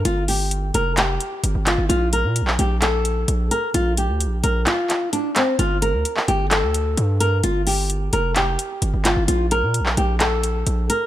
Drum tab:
HH |x-o-x-x-x-x-x-x-|x-x-x-x-x-x-x-x-|x-x-x-x-x-x-x-x-|x-x-x-x-x-x-x-x-|
CP |--------x-----x-|-----x--x-------|--------x-x---x-|-----x--x-------|

HH |x-o-x-x-x-x-x-x-|x-x-x-x-x-x-x-x-|
CP |--------x-----x-|-----x--x-------|